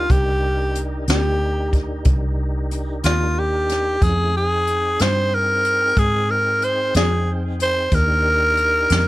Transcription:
0.00 0.12 F4 medium
0.09 1.05 C2 medium
0.09 3.98 D4 medium
0.09 3.97 D#4 medium
0.09 3.98 G4 medium
0.09 0.82 G4 medium
0.09 3.97 A#4 medium
0.09 kick medium
0.09 closed hi-hat medium
0.75 closed hi-hat medium
1.08 2.03 D2 medium
1.08 1.78 G4 medium
1.08 snare medium
1.08 closed hi-hat medium
1.73 kick medium
1.73 closed hi-hat soft
2.05 3.01 C2 medium
2.05 kick medium
2.05 closed hi-hat medium
2.71 closed hi-hat soft
3.04 3.99 D#2 medium
3.04 3.40 F4 medium
3.04 snare loud
3.04 closed hi-hat medium
3.39 4.05 G4 medium
3.69 snare soft
3.69 closed hi-hat medium
4.01 4.97 F2 medium
4.01 4.34 A3 medium
4.01 4.34 C#4 medium
4.01 4.34 E4 medium
4.01 4.34 G#4 medium
4.01 4.35 G#4 medium
4.01 kick medium
4.01 closed hi-hat medium
4.34 7.89 C4 medium
4.34 7.89 D#4 medium
4.34 7.90 G#4 medium
4.34 5.03 G#4 medium
4.34 7.90 G5 medium
4.67 closed hi-hat medium
4.99 5.95 G2 medium
4.99 5.36 C5 medium
4.99 snare medium
4.99 closed hi-hat medium
5.34 6.00 A#4 medium
5.65 closed hi-hat soft
5.97 6.92 G#2 medium
5.97 6.32 G#4 medium
5.97 kick medium
5.97 closed hi-hat medium
6.31 6.66 A#4 medium
6.62 6.95 C5 medium
6.62 closed hi-hat soft
6.94 7.90 F2 medium
6.94 7.31 G#4 medium
6.94 snare loud
6.94 closed hi-hat medium
7.60 7.96 C5 medium
7.60 closed hi-hat medium
7.91 8.87 D#2 medium
7.91 9.08 D4 medium
7.91 9.08 D#4 medium
7.91 9.08 G4 medium
7.91 9.08 A#4 medium
7.91 kick medium
7.91 closed hi-hat medium
8.57 closed hi-hat soft
8.90 9.08 F2 medium
8.90 snare medium
8.90 closed hi-hat medium

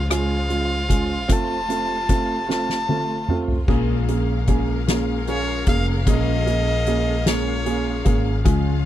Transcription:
0.00 1.29 C#2 medium
0.00 1.28 C#3 medium
0.00 3.64 F3 medium
0.00 1.28 G#3 medium
0.00 3.65 F4 medium
0.10 0.36 G#3 medium
0.10 0.36 C#4 medium
0.10 0.36 F4 medium
0.10 1.33 F5 medium
0.10 cross-stick medium
0.10 closed hi-hat medium
0.49 0.76 G#3 medium
0.49 0.76 C#4 medium
0.49 0.76 F4 medium
0.49 closed hi-hat soft
0.89 1.15 G#3 medium
0.89 1.15 C#4 medium
0.89 1.15 F4 medium
0.89 kick medium
0.89 closed hi-hat medium
1.28 3.64 F1 medium
1.28 3.65 C3 medium
1.28 3.65 A3 medium
1.28 1.55 A3 medium
1.28 1.55 C4 medium
1.28 1.55 F4 medium
1.28 2.50 A5 medium
1.28 kick medium
1.28 closed hi-hat medium
1.69 1.95 A3 medium
1.69 1.95 C4 medium
1.69 1.95 F4 medium
1.69 closed hi-hat soft
2.09 2.35 A3 medium
2.09 2.35 C4 medium
2.09 2.35 F4 medium
2.09 kick medium
2.09 cross-stick soft
2.09 closed hi-hat medium
2.48 2.75 A3 medium
2.48 2.75 C4 medium
2.48 2.75 F4 medium
2.48 3.36 A5 medium
2.48 snare soft
2.69 snare medium
2.89 3.14 A3 medium
2.89 3.15 C4 medium
2.89 3.15 F4 medium
2.89 high tom medium
3.28 3.55 A3 medium
3.28 3.55 C4 medium
3.28 3.55 F4 medium
3.28 mid tom medium
3.48 floor tom medium
3.68 5.63 A#1 medium
3.68 4.08 A#2 medium
3.68 4.08 F3 medium
3.68 4.08 G#3 medium
3.68 3.94 A#3 medium
3.68 8.85 C#4 medium
3.68 3.94 C#4 medium
3.68 4.08 C#4 medium
3.68 4.06 F4 medium
3.68 3.94 G#4 medium
3.68 8.85 G#4 medium
3.68 8.42 A#4 medium
3.68 8.41 F5 medium
3.68 kick loud
3.68 crash medium
4.08 4.47 G#3 soft
4.08 4.34 A#3 medium
4.08 4.34 C#4 medium
4.08 4.48 C#4 soft
4.08 4.48 F4 soft
4.08 4.34 G#4 medium
4.08 closed hi-hat soft
4.47 4.87 F3 medium
4.47 4.87 G#3 medium
4.47 4.74 A#3 medium
4.47 4.74 C#4 medium
4.47 4.87 C#4 medium
4.47 4.86 F4 medium
4.47 4.74 G#4 medium
4.47 kick medium
4.47 closed hi-hat soft
4.87 5.28 A#2 medium
4.87 5.25 F3 medium
4.87 5.26 G#3 medium
4.87 5.14 A#3 medium
4.87 5.27 C#4 medium
4.87 5.14 C#4 medium
4.87 5.27 F4 medium
4.87 5.14 G#4 medium
4.87 snare loud
4.87 closed hi-hat medium
5.26 5.67 F3 medium
5.26 5.67 G#3 medium
5.26 5.53 C#4 medium
5.26 5.67 C#4 medium
5.26 5.66 F4 medium
5.26 5.54 G#4 medium
5.26 5.65 C#5 medium
5.26 closed hi-hat soft
5.66 6.04 F1 medium
5.66 6.06 G#3 soft
5.66 5.93 A#3 medium
5.66 5.93 C#4 medium
5.66 6.07 F4 medium
5.66 5.93 G#4 medium
5.66 5.86 F5 medium
5.66 kick medium
5.66 closed hi-hat medium
6.06 8.02 A#1 medium
6.06 6.46 A#2 medium
6.06 6.47 F3 medium
6.06 6.47 G#3 medium
6.06 6.32 A#3 medium
6.06 6.33 C#4 medium
6.06 6.46 C#4 medium
6.06 6.45 F4 medium
6.06 6.33 G#4 medium
6.06 7.30 D#5 medium
6.06 kick loud
6.06 closed hi-hat medium
6.46 6.72 A#3 medium
6.46 6.72 C#4 medium
6.46 6.86 F4 soft
6.46 6.72 G#4 medium
6.46 closed hi-hat medium
6.86 7.26 F3 medium
6.86 7.25 G#3 medium
6.86 7.13 A#3 medium
6.86 7.13 C#4 medium
6.86 7.25 C#4 medium
6.86 7.25 F4 medium
6.86 7.13 G#4 medium
6.86 closed hi-hat soft
7.26 7.67 A#2 medium
7.26 7.64 F3 medium
7.26 7.65 G#3 medium
7.26 7.52 A#3 medium
7.26 7.66 C#4 medium
7.26 7.52 C#4 medium
7.26 7.66 F4 medium
7.26 7.52 G#4 medium
7.26 8.17 C#5 medium
7.26 snare loud
7.26 closed hi-hat medium
7.65 8.05 F3 medium
7.65 8.06 G#3 medium
7.65 7.91 A#3 medium
7.65 7.92 C#4 medium
7.65 8.05 C#4 medium
7.65 8.04 F4 medium
7.65 7.92 G#4 medium
7.65 closed hi-hat soft
8.05 8.43 G#1 medium
8.05 8.44 G#3 soft
8.05 8.31 A#3 medium
8.05 8.31 C#4 medium
8.05 8.45 C#4 soft
8.05 8.45 F4 medium
8.05 8.31 G#4 medium
8.05 kick medium
8.05 closed hi-hat medium
8.45 8.85 C#2 medium
8.45 8.85 C#3 medium
8.45 8.85 F3 medium
8.45 8.71 G#3 medium
8.45 8.85 G#3 medium
8.45 8.71 C#4 medium
8.45 8.85 C#4 medium
8.45 8.71 F4 medium
8.45 8.85 F4 medium
8.45 8.84 F4 loud
8.45 8.85 F5 medium
8.45 kick loud
8.45 closed hi-hat medium

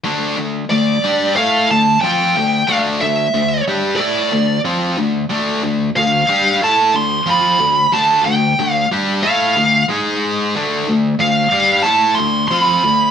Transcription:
0.04 0.36 D3 medium
0.04 0.36 A3 medium
0.04 0.37 D4 medium
0.37 0.63 D3 medium
0.37 0.64 A3 medium
0.70 0.97 D3 medium
0.70 0.97 A3 medium
0.70 1.36 D5 medium
1.04 1.35 G3 medium
1.04 1.36 D4 loud
1.04 1.36 G4 medium
1.36 1.68 A3 loud
1.36 1.69 E4 medium
1.36 1.69 A4 loud
1.36 1.70 F5 medium
1.70 1.96 D3 medium
1.70 1.96 A3 medium
1.70 2.01 A5 loud
2.01 2.34 F3 medium
2.01 2.34 C4 medium
2.01 2.35 F4 medium
2.01 2.63 G5 loud
2.36 2.62 D3 medium
2.36 2.62 A3 medium
2.68 3.00 D3 medium
2.68 3.00 A3 loud
2.68 3.00 D4 loud
2.68 2.76 F5 medium
3.01 3.27 D3 medium
3.01 3.27 A3 medium
3.01 3.62 E5 medium
3.34 3.60 D3 medium
3.34 3.60 A3 medium
3.68 3.99 G3 medium
3.68 3.99 D4 medium
3.68 3.99 G4 medium
3.96 4.31 A3 medium
3.96 4.31 E4 loud
3.96 4.59 D5 loud
4.01 4.32 A4 loud
4.32 4.58 D3 medium
4.32 4.58 A3 medium
4.65 4.96 F3 medium
4.65 4.97 C4 loud
4.65 4.97 F4 medium
4.98 5.24 D3 medium
4.98 5.24 A3 medium
5.30 5.62 D3 loud
5.30 5.62 A3 medium
5.30 5.62 D4 loud
5.63 5.89 D3 medium
5.63 5.89 A3 medium
5.96 6.22 D3 medium
5.96 6.23 A3 medium
5.96 6.63 F5 medium
6.29 6.60 G3 medium
6.29 6.61 D4 medium
6.29 6.61 G4 medium
6.62 6.93 A3 loud
6.62 6.93 E4 loud
6.62 6.94 A4 loud
6.62 6.96 A5 medium
6.94 7.20 D3 medium
6.94 7.21 A3 medium
6.94 7.29 C6 loud
7.26 7.58 F3 medium
7.26 7.59 C4 loud
7.26 7.59 F4 medium
7.26 7.96 B5 medium
7.59 7.86 D3 medium
7.59 7.86 A3 medium
7.92 8.24 D3 medium
7.92 8.24 A3 loud
7.92 8.25 D4 medium
7.92 8.25 A5 medium
8.25 8.52 D3 medium
8.25 8.52 A3 medium
8.25 8.71 G5 medium
8.59 8.85 D3 medium
8.59 8.85 A3 medium
8.71 8.87 F5 medium
8.92 9.23 G3 medium
8.92 9.23 D4 medium
8.92 9.24 G4 medium
9.23 9.55 A3 medium
9.23 9.55 E4 loud
9.23 9.56 A4 loud
9.23 9.85 F5 loud
9.56 9.82 D3 medium
9.56 9.83 A3 medium
9.89 10.54 G#3 medium
9.89 10.54 D#4 medium
9.89 10.54 G#4 loud
10.55 10.87 D3 medium
10.55 10.87 A3 medium
10.55 10.87 D4 loud
10.88 11.14 D3 medium
10.88 11.14 A3 medium
11.19 11.46 D3 medium
11.19 11.46 A3 medium
11.19 11.88 F5 medium
11.52 11.84 G3 medium
11.52 11.84 D4 medium
11.52 11.85 G4 medium
11.83 12.17 A3 medium
11.83 12.17 E4 loud
11.83 12.17 A4 loud
11.83 12.14 A5 medium
12.15 12.45 D3 medium
12.15 12.45 A3 medium
12.15 12.48 C6 loud
12.48 12.83 F3 medium
12.48 12.83 C4 medium
12.48 12.83 F4 loud
12.48 13.11 B5 medium
12.84 13.10 D3 medium
12.84 13.10 A3 medium

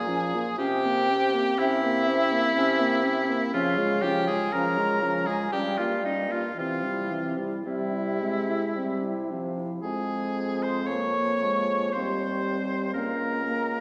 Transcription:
0.00 0.46 A#2 medium
0.00 0.10 F4 medium
0.00 0.58 G#4 medium
0.00 0.59 G#5 medium
0.08 0.36 F3 medium
0.08 0.36 C#4 medium
0.34 0.58 A#3 medium
0.34 0.59 F4 medium
0.58 1.46 C3 medium
0.58 0.86 C4 medium
0.58 0.86 C#4 medium
0.58 1.60 G4 loud
0.58 1.61 G5 medium
0.84 1.11 A#3 medium
0.84 1.11 C4 medium
1.10 1.35 C4 medium
1.10 1.36 C#4 medium
1.34 1.58 A#3 medium
1.34 1.59 C4 medium
1.59 2.45 C3 medium
1.59 1.85 C4 medium
1.59 1.86 C#4 medium
1.59 3.53 E4 loud
1.59 3.29 E5 loud
1.84 2.10 A#3 medium
1.84 2.11 C4 medium
2.08 2.33 C4 medium
2.08 2.36 C#4 medium
2.32 2.56 A#3 medium
2.32 2.56 C4 medium
2.56 3.42 C3 medium
2.56 2.82 C4 medium
2.56 2.83 C#4 medium
2.81 3.06 A#3 medium
2.81 3.07 C4 medium
3.04 3.31 C4 medium
3.04 3.31 C#4 medium
3.29 3.54 A#3 medium
3.29 3.53 C4 medium
3.53 4.41 C#3 medium
3.53 3.79 F3 medium
3.53 3.80 C#4 medium
3.53 4.04 F4 loud
3.53 4.05 F5 medium
3.78 4.05 G#3 medium
3.78 4.06 F4 medium
4.02 4.30 F3 medium
4.02 4.31 C#4 medium
4.02 4.27 G4 medium
4.02 4.30 G5 medium
4.27 4.53 G#3 medium
4.27 4.53 F4 medium
4.27 4.54 G#4 medium
4.27 4.54 G#5 medium
4.53 5.41 C#3 medium
4.53 4.78 F3 medium
4.53 4.80 C#4 medium
4.53 5.28 A#4 loud
4.53 5.27 A#5 loud
4.77 5.04 G#3 medium
4.77 5.04 F4 medium
5.02 5.28 F3 medium
5.02 5.30 C#4 soft
5.26 5.51 G#3 medium
5.26 5.53 F4 medium
5.26 5.51 G#4 medium
5.26 5.54 G#5 medium
5.52 6.44 G2 medium
5.52 5.80 G3 soft
5.52 5.81 C#4 medium
5.52 5.79 G4 medium
5.52 5.82 G5 medium
5.78 6.04 A#3 soft
5.78 6.04 F4 medium
5.78 6.08 F4 medium
5.78 6.06 F5 medium
6.03 6.30 G3 soft
6.03 6.35 C#4 soft
6.03 6.33 D#4 medium
6.03 6.33 D#5 medium
6.29 6.55 A#3 soft
6.29 6.57 F4 medium
6.29 6.57 F5 medium
6.33 6.58 F4 soft
6.55 7.53 C3 medium
6.55 6.84 E3 soft
6.55 7.35 F4 medium
6.55 7.34 F5 medium
6.60 6.87 C4 soft
6.83 7.11 G3 soft
6.83 7.14 E4 soft
7.10 7.39 E3 soft
7.10 7.40 C4 soft
7.37 7.63 G3 soft
7.37 7.66 E4 soft
7.64 8.63 C3 medium
7.64 8.21 G3 medium
7.64 7.95 C4 soft
7.64 9.27 E4 medium
7.64 9.27 E5 medium
7.93 8.23 E4 soft
8.20 8.77 G#3 medium
8.20 8.50 C4 soft
8.49 8.76 E4 soft
8.76 9.71 C3 soft
8.76 9.14 G3 medium
8.76 9.05 C4 soft
9.03 9.33 E4 soft
9.31 9.82 F3 soft
9.31 9.60 C4 soft
9.58 9.85 E4 soft
9.82 11.90 F2 medium
9.82 10.91 G#3 soft
9.82 10.64 G#4 medium
9.82 10.66 G#5 medium
9.86 10.93 C4 soft
10.63 10.88 C5 medium
10.63 10.88 C6 medium
10.87 11.44 A#3 medium
10.87 11.95 C#5 medium
10.87 11.96 C#6 medium
10.92 11.97 A#3 medium
11.43 11.93 G#3 soft
11.93 12.92 D#2 medium
11.93 12.96 G3 medium
11.93 12.97 C4 medium
11.93 12.93 C5 medium
11.93 12.95 C6 medium
12.94 13.80 C#2 medium
12.94 13.44 A#3 medium
12.94 13.78 C#4 soft
12.94 13.80 A#4 medium
12.94 13.80 A#5 medium
13.44 13.80 A#3 medium

